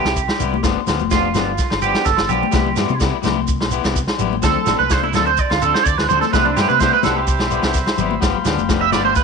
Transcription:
Already playing: clean electric guitar G4
0.04 fingered electric bass C2, clean electric guitar E4 G4, muted clean electric guitar stroke, snare, shekere
0.16 kick, shekere
0.28 snare, low agogo
0.39 fingered electric bass C2, clean electric guitar G3 B3 E4 G4, low conga, shekere
0.54 high conga
0.63 fingered electric bass G1, clean electric guitar F3 B3 D4 G4, kick, snare, low agogo, shekere
0.87 fingered electric bass D2, clean electric guitar F3 B3 G4, snare, low agogo, shekere
0.99 fingered electric bass F1, high conga, shekere
1.11 clean electric guitar F3 B3 D4 F4, kick, snare, shekere
1.15 clean electric guitar G4
1.34 fingered electric bass G1, clean electric guitar F3 B3 D4, snare, high conga, low conga, low agogo, shekere
1.38 clean electric guitar G4
1.58 kick, snare, shekere
1.70 fingered electric bass G1, snare, low agogo
1.82 clean electric guitar F3 B3 D4 G4, shekere
1.86 clean electric guitar G4
1.94 clean electric guitar B3 D4 G4, snare, shekere
2.05 fingered electric bass G1, clean electric guitar A4, kick, snare, shekere
2.17 fingered electric bass G1, snare, low agogo
2.29 fingered electric bass B1, clean electric guitar F3 B3 D4 G4, low conga, shekere
2.43 high conga
2.51 fingered electric bass C2, clean electric guitar G3 B3 E4 G4, kick, snare, low agogo, shekere
2.67 low conga
2.76 fingered electric bass G2, clean electric guitar G3 B3 E4 G4, snare, low agogo, shekere
2.89 fingered electric bass C3, high conga, shekere
3.00 clean electric guitar G3 B3 E4 G4, kick, snare, shekere
3.22 fingered electric bass C2, clean electric guitar G3 B3 E4 G4, snare, high conga, low conga, low agogo, shekere
3.48 kick, shekere
3.61 fingered electric bass B1, snare, low agogo
3.71 clean electric guitar B3 E4 G4, muted clean electric guitar stroke, shekere
3.83 fingered electric bass C2, clean electric guitar B3 E4 G4, snare, shekere
3.96 kick, shekere
4.07 snare, low agogo
4.18 fingered electric bass A1, clean electric guitar G3 B3 E4 G4, low conga, shekere
4.33 high conga
4.42 fingered electric bass D2, clean electric guitar F3 C4 D4 A4, kick, snare, low agogo, shekere
4.57 low conga
4.64 fingered electric bass A1, clean electric guitar F3 C4 D4 A4, snare, low agogo, shekere
4.79 fingered electric bass C2, clean electric guitar B4, high conga
4.90 clean electric guitar F3 D4 A4 C5, muted clean electric guitar stroke, kick, snare, shekere
5.03 clean electric guitar E4, high conga
5.13 fingered electric bass D2, clean electric guitar F3 C4 D4 A4, snare, low conga, low agogo, shekere
5.26 clean electric guitar C5, shekere
5.37 clean electric guitar D5, kick, shekere
5.50 fingered electric bass D2, clean electric guitar F4, snare, low agogo
5.62 clean electric guitar F3 C4 D4 A4, shekere
5.74 clean electric guitar C4 D4 A4 C5, snare
5.86 fingered electric bass D2, clean electric guitar D5, kick, shekere
5.98 fingered electric bass D2, clean electric guitar B4, snare, low agogo
6.09 fingered electric bass D2, clean electric guitar F3 C4 D4 C5, low conga, shekere
6.13 clean electric guitar A4
6.21 clean electric guitar A4, snare, high conga, shekere
6.31 fingered electric bass C2, clean electric guitar G3 B3 E4 B4, transistor combo organ C5 E5 B5, kick, snare, low agogo, shekere
6.36 clean electric guitar G4
6.45 clean electric guitar D4, low conga
6.57 fingered electric bass G2, clean electric guitar G3 B3 G4, snare, low agogo, shekere
6.61 clean electric guitar E4 G4
6.68 fingered electric bass C3, clean electric guitar B4, high conga, shekere
6.80 clean electric guitar G3 B3 E4 C5, kick, snare, shekere
6.84 clean electric guitar G4
6.93 clean electric guitar B4
7.03 fingered electric bass C2, clean electric guitar G3 B3 E4 A4, snare, high conga, low conga, low agogo, shekere
7.07 clean electric guitar G4
7.17 clean electric guitar G4
7.27 kick, shekere
7.39 fingered electric bass B1, snare, low agogo
7.50 clean electric guitar G3 B3 E4 G4, shekere
7.62 fingered electric bass C2, clean electric guitar B3 E4 G4, snare, shekere
7.74 kick, snare, shekere
7.86 snare, low agogo
7.98 fingered electric bass G#1, clean electric guitar G3 B3 E4 G4, low conga, shekere
8.11 high conga
8.21 fingered electric bass G1, clean electric guitar F3 B3 G4, transistor combo organ F5 G5, muted clean electric guitar stroke, kick, snare, low agogo, shekere
8.34 low conga
8.44 fingered electric bass D2, clean electric guitar F3 B3 D4 G4, snare, low agogo, shekere
8.56 fingered electric bass F1, high conga, shekere
8.69 clean electric guitar F3 B3 D4 G4, kick, snare, shekere
8.81 clean electric guitar E5
8.92 fingered electric bass G1, clean electric guitar F3 B3 D4 G4 D5, snare, high conga, low conga, low agogo, shekere
9.05 clean electric guitar C5
9.15 clean electric guitar B4, kick, snare, shekere

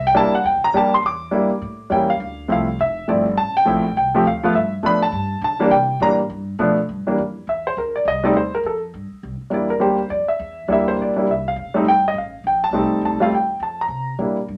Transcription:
Already playing: upright bass C2
0.07 grand piano G5
0.15 upright bass D2, grand piano G3 A#3 D4 E4 A5
0.33 grand piano F#5, muted upright bass stroke
0.44 upright bass E2, grand piano G5
0.55 upright bass C2
0.64 upright bass A#1, grand piano A#5
0.73 upright bass F2, grand piano G3 A#3 D4 G4 A5
0.94 grand piano C6
1.03 upright bass E2, grand piano D6
1.31 upright bass G2, grand piano G3 A#3 D4 E4
1.51 muted upright bass stroke
1.62 upright bass A2
1.90 upright bass E2, grand piano G3 A#3 C#4 E4 G5
2.10 grand piano F5
2.20 upright bass D2
2.48 upright bass C2, grand piano F3 A3 C4 E4 F5
2.79 upright bass F1, grand piano E5
3.08 upright bass G1, grand piano F3 A3 C4 E4 D5
3.37 upright bass A1, grand piano A5
3.57 grand piano G5
3.65 upright bass A#1, grand piano F3 A3 C4 E4
3.96 upright bass C2, grand piano G5
4.14 grand piano F3 A3 C4 G4
4.25 upright bass D2, grand piano F5
4.43 grand piano F3 A3 B3 F4
4.53 upright bass G2, grand piano E5
4.83 upright bass A2, grand piano F3 A3 B3 D4 B5
5.03 grand piano A5
5.12 upright bass G2
5.41 upright bass D3, grand piano A5
5.59 grand piano E3 G3 A#3 D4, muted upright bass stroke
5.70 upright bass C3, grand piano G5
6.00 upright bass A2, grand piano E3 G3 A#3 D4 A#5
6.30 upright bass G2
6.59 upright bass B2, grand piano F3 A3 B3 D4
6.89 upright bass G2
7.07 grand piano E3 G3 A#3 D4, muted upright bass stroke
7.18 upright bass F2
7.47 upright bass E2, grand piano E5
7.67 grand piano C5
7.77 upright bass D2, grand piano A#4
7.96 grand piano D5
8.05 upright bass C2, grand piano D#5
8.24 grand piano G3 A3 C4 D#4 D5
8.32 upright bass D#2, grand piano B4
8.37 grand piano C5
8.55 grand piano A#4
8.63 upright bass F2, grand piano A4
8.94 upright bass G2
9.12 muted upright bass stroke
9.23 upright bass C2
9.41 muted upright bass stroke
9.50 upright bass E2, grand piano G3 A#3 D4 E4 D5
9.70 grand piano A#4
9.80 upright bass D2, grand piano G3 A#3 D4 G4 C5
10.10 upright bass F2, grand piano D5
10.28 grand piano E5, muted upright bass stroke
10.39 upright bass E2
10.68 upright bass D2, grand piano G3 A#3 D4 E4
10.73 grand piano E5
10.88 grand piano C5
10.97 upright bass A#1
11.02 grand piano D5
11.16 grand piano G3 A#3 D4 E4
11.27 upright bass C2
11.31 grand piano E5
11.48 grand piano F5
11.56 upright bass F1
11.74 grand piano G3 A3 C4 D#4, muted upright bass stroke
11.85 upright bass G1, grand piano G5
12.08 grand piano D#5
12.14 upright bass A1
12.18 grand piano F5
12.44 upright bass A#1, grand piano G5
12.64 grand piano A5
12.71 upright bass C2, grand piano G3 A3 C4 D#4
12.90 muted upright bass stroke
13.01 upright bass D2
13.05 grand piano A5
13.11 upright bass C2
13.20 upright bass A1, grand piano G3 A3 C4 F4 F5
13.30 upright bass D#2
13.35 grand piano G5
13.60 upright bass F2, grand piano A5
13.81 grand piano A#5
13.88 upright bass C3
14.19 upright bass A#2, grand piano G3 A#3 D4 E4
14.48 upright bass G2

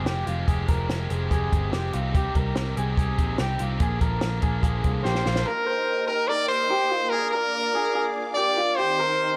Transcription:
0.05 picked electric bass F1, overdriven electric guitar F3 G#3 C4 G4, clean electric guitar G4, snare, closed hi-hat
0.26 picked electric bass F1, overdriven electric guitar F3 G#3 C4 G4, clean electric guitar F4, closed hi-hat
0.48 picked electric bass F1, overdriven electric guitar F2 C3 F3 G#3 C4 G4, clean electric guitar G#4, kick, closed hi-hat
0.68 picked electric bass F1, clean electric guitar A#4, kick, closed hi-hat
0.89 picked electric bass F1, overdriven electric guitar F3 G#3 C4 G4, snare, closed hi-hat
1.10 picked electric bass F1, clean electric guitar G#4, closed hi-hat
1.31 picked electric bass F1, overdriven electric guitar F2 C3 F3 G#3 C4 G4, clean electric guitar G#4, kick, closed hi-hat
1.52 picked electric bass G1, kick, closed hi-hat
1.72 picked electric bass F1, overdriven electric guitar F3 G#3 C4 G4, clean electric guitar G4, snare, closed hi-hat
1.93 picked electric bass C2, overdriven electric guitar C4 D#4 G4, clean electric guitar F4, closed hi-hat
2.13 overdriven electric guitar C3 G3 C4 D#4 G4, clean electric guitar G4, kick, closed hi-hat
2.35 picked electric bass C2, clean electric guitar A#4, kick, closed hi-hat
2.56 picked electric bass C2, overdriven electric guitar G3 C4 D#4 G4, snare, closed hi-hat
2.76 picked electric bass C2, overdriven electric guitar C4 D#4 G4, clean electric guitar G#4, closed hi-hat
2.96 picked electric bass C2, overdriven electric guitar C3 C4 D#4 G4, clean electric guitar G#4, kick, closed hi-hat
3.18 picked electric bass A#1, kick, closed hi-hat
3.38 picked electric bass C2, overdriven electric guitar G3 C4 D#4 G4, clean electric guitar G4, snare, closed hi-hat
3.59 picked electric bass C2, overdriven electric guitar C4 D#4 G4, clean electric guitar F4, closed hi-hat
3.80 picked electric bass A#1, overdriven electric guitar A#2 D3 F3 A#3 D4, clean electric guitar G#4, kick, closed hi-hat
4.01 picked electric bass A#1, clean electric guitar A#4, kick, closed hi-hat
4.21 picked electric bass A#1, overdriven electric guitar D3 F3 A#3 D4, snare, closed hi-hat
4.41 picked electric bass A#1, overdriven electric guitar F3 A#3 D4, clean electric guitar G#4, kick, closed hi-hat
4.62 picked electric bass A#1, overdriven electric guitar A#2 D3 F3 A#3 D4, clean electric guitar G#4, kick, closed hi-hat
4.84 picked electric bass C2, kick, closed hi-hat
5.03 picked electric bass A#1, overdriven electric guitar D3 F3 A#3 D4, clean electric guitar G4, trumpet C5, snare
5.15 snare
5.26 picked electric bass A#1, overdriven electric guitar F3 A#3 D4, clean electric guitar F4, snare
5.36 snare
5.46 clean electric guitar A#4, string machine A#4 D#5 G5 D#6, trumpet A#4
5.66 clean electric guitar C5
6.07 trumpet A#4, clean electric guitar A#4
6.28 clean electric guitar A#4, trumpet D5
6.48 trumpet C5
6.70 clean electric guitar G4
6.91 clean electric guitar F4
7.09 clean electric guitar G#4, trumpet A#4, string machine D5 F5 D6
7.31 trumpet A#4, clean electric guitar A#4
7.75 clean electric guitar G#4
7.95 clean electric guitar G#4
8.34 clean electric guitar G4, trumpet D5
8.57 clean electric guitar F4
8.76 clean electric guitar G4, trumpet C5
8.80 string machine D#4 C5 G5
9.00 clean electric guitar A#4

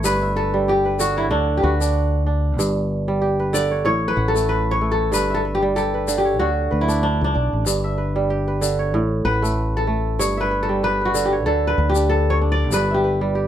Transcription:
Already playing: kora A3 C#5 F#5
0.04 fingered electric bass G1, kora G2 B4, shaker
0.22 kora E5
0.36 kora A4 B4
0.54 kora G3
0.68 kora G4
0.85 kora B4
0.99 kora D3 F#4, shaker
1.17 kora E4 C#5
1.31 fingered electric bass D2, kora D3 D4
1.57 kora G4
1.62 fingered electric bass D2, kora F#4 B4
1.81 kora D4, shaker
2.27 kora D4
2.59 fingered electric bass G1, kora G2, shaker
3.08 kora G3
3.22 kora G4
3.40 kora B4
3.53 kora D3 D5, shaker
3.71 kora C#5
3.85 fingered electric bass A1, kora A2 C#5
4.08 kora B4
4.17 fingered electric bass A1, kora F#5
4.28 kora A4
4.35 kora A3, shaker
4.49 kora B4
4.71 kora C#5
4.81 kora A3
4.92 kora A4
5.12 fingered electric bass G1, kora G2 B4, shaker
5.30 kora E5
5.34 kora A4
5.45 kora B4
5.55 kora G4
5.62 kora G3
5.76 kora G4 A4, shaker
5.94 kora B4
6.08 kora D3, shaker
6.18 kora G4
6.25 kora C#5
6.39 fingered electric bass D2, kora D3 F#4
6.71 fingered electric bass D2, kora B4
6.81 kora E4
6.88 kora D4, shaker
7.03 kora D4
7.21 fingered electric bass C#2, kora D4
7.34 fingered electric bass B1, kora D4
7.53 fingered electric bass A1
7.66 fingered electric bass G1, kora G2, shaker
7.84 kora E5
7.98 kora B4
8.16 kora G3
8.30 kora G4
8.48 kora B4
8.61 kora D3, shaker
8.79 kora C#5
8.93 fingered electric bass A1, kora A2
9.25 fingered electric bass A1, kora B4 F#5
9.42 kora A3, shaker
9.77 kora A4
9.87 kora A3
10.19 fingered electric bass G1, kora G2 C#5, shaker
10.37 kora B4 E5
10.51 kora B4
10.63 kora A4
10.69 kora G3
10.83 kora G4 B4
11.01 kora B4
11.05 kora F#4
11.14 kora D3, shaker
11.25 kora G4
11.32 kora C#5
11.46 fingered electric bass D2, kora D3 A4
11.67 kora B4
11.78 fingered electric bass D2, kora B4
11.89 kora G4
11.95 kora D4, shaker
12.09 kora A4
12.30 kora C#5
12.41 kora D4
12.52 kora D5
12.72 fingered electric bass G1, kora G2 B4, shaker
12.91 kora G4 E5
13.04 kora B4
13.21 kora G3
13.35 kora G4

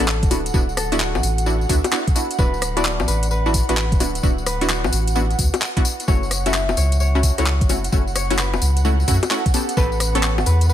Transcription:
Already playing: harp C#5, ambient pad F#5
0.00 sub bass A1, harp A4
0.08 clap, tambourine
0.23 sub bass D1, kick, closed hi-hat, tambourine
0.31 synth stab B3 D4 E4 F#4, open hi-hat, tambourine, high bongo
0.46 closed hi-hat, tambourine
0.54 sub bass D1, synth stab B3 D4 E4 F#4, kick, tambourine
0.69 tambourine
0.77 harp A4, cross-stick, open hi-hat, tambourine
0.92 synth stab B3 D4 E4 F#4, closed hi-hat, tambourine
1.00 harp F#4, clap, tambourine
1.15 sub bass B1, tambourine, high bongo
1.23 sub bass A1, open hi-hat, tambourine
1.38 closed hi-hat, tambourine
1.46 synth stab B3 D4 E4 F#4, tambourine
1.61 tambourine
1.69 sub bass D2, synth stab B3 D4 E4 F#4, kick, open hi-hat, tambourine
1.84 cross-stick, closed hi-hat, tambourine, high bongo
1.92 synth stab B3 D4 E4 F#4, clap, tambourine
2.07 kick, closed hi-hat, tambourine
2.15 synth stab B3 D4 E4 F#4, open hi-hat, tambourine
2.31 closed hi-hat, tambourine
2.38 sub bass D1, synth stab B3 D4 E4 F#4, harp B4, kick, tambourine
2.54 tambourine
2.62 cross-stick, open hi-hat, tambourine
2.77 synth stab B3 D4 E4 F#4, harp D5, closed hi-hat, tambourine
2.85 clap, tambourine
3.00 sub bass B1, tambourine, high bongo
3.08 sub bass A1, harp B4, open hi-hat, tambourine
3.23 closed hi-hat, tambourine
3.31 harp B4, tambourine
3.46 synth stab B3 D4 E4 F#4, tambourine
3.54 kick, open hi-hat, tambourine
3.69 sub bass A1, synth stab B3 D4 E4 F#4, harp B4, cross-stick, closed hi-hat, tambourine
3.77 clap, tambourine
3.92 sub bass D1, kick, closed hi-hat, tambourine
4.00 synth stab B3 D4 E4 F#4, open hi-hat, tambourine, high bongo
4.15 closed hi-hat, tambourine
4.23 sub bass D1, synth stab B3 D4 E4 F#4, kick, tambourine
4.38 tambourine
4.46 harp B4, cross-stick, open hi-hat, tambourine
4.61 synth stab B3 D4 E4 F#4, closed hi-hat, tambourine
4.69 harp F#4, clap, tambourine
4.84 sub bass B1, tambourine, high bongo
4.92 sub bass A1, open hi-hat, tambourine
5.07 closed hi-hat, tambourine
5.15 synth stab B3 D4 E4 F#4, tambourine
5.31 closed hi-hat, tambourine
5.39 sub bass D2, kick, open hi-hat, tambourine
5.54 cross-stick, closed hi-hat, tambourine, high bongo
5.62 clap, tambourine
5.77 synth stab B3 D4 E4 F#4, kick, closed hi-hat, tambourine
5.85 open hi-hat, tambourine
6.00 closed hi-hat, tambourine
6.08 sub bass F#1, synth stab A3 C#4 E4 F#4, harp C#5, ambient pad F#5, kick, tambourine
6.23 tambourine
6.31 cross-stick, open hi-hat, tambourine
6.46 synth stab A3 C#4 E4 F#4, harp E5, closed hi-hat, tambourine
6.54 clap, tambourine
6.69 sub bass E1, tambourine, high bongo
6.77 sub bass C#2, harp C#5, open hi-hat, tambourine
6.92 closed hi-hat, tambourine
7.00 harp C#5, tambourine
7.15 synth stab A3 C#4 E4 F#4, tambourine
7.23 kick, open hi-hat, tambourine
7.38 sub bass C#2, synth stab A3 C#4 E4 F#4, harp C#5, cross-stick, closed hi-hat, tambourine
7.46 clap, tambourine
7.61 sub bass F#1, kick, closed hi-hat, tambourine
7.69 synth stab A3 C#4 E4 F#4, open hi-hat, tambourine, high bongo
7.84 closed hi-hat, tambourine
7.92 sub bass F#1, synth stab A3 C#4 E4 F#4, kick, tambourine
8.07 tambourine
8.15 harp C#5, cross-stick, open hi-hat, tambourine
8.30 synth stab A3 C#4 E4 F#4, closed hi-hat, tambourine
8.38 harp B4, clap, tambourine
8.54 sub bass E1, tambourine, high bongo
8.62 sub bass C#2, open hi-hat, tambourine
8.77 closed hi-hat, tambourine
8.85 synth stab A3 C#4 E4 F#4, tambourine
9.00 tambourine
9.08 sub bass F#2, synth stab A3 C#4 E4 F#4, kick, open hi-hat, tambourine
9.23 cross-stick, closed hi-hat, tambourine, high bongo
9.31 synth stab A3 C#4 E4 F#4, clap, tambourine
9.46 kick, closed hi-hat, tambourine
9.54 synth stab B3 C#4 G4 A4, open hi-hat, tambourine
9.69 closed hi-hat, tambourine
9.77 sub bass A1, synth stab B3 C#4 G4 A4, harp B4, kick, tambourine
9.92 tambourine
10.00 cross-stick, open hi-hat, tambourine
10.15 synth stab B3 C#4 G4 A4, harp C#5, closed hi-hat, tambourine
10.23 clap, tambourine
10.38 sub bass G1, tambourine, high bongo
10.46 sub bass E2, harp B4, open hi-hat, tambourine
10.61 closed hi-hat, tambourine
10.69 harp B4, tambourine

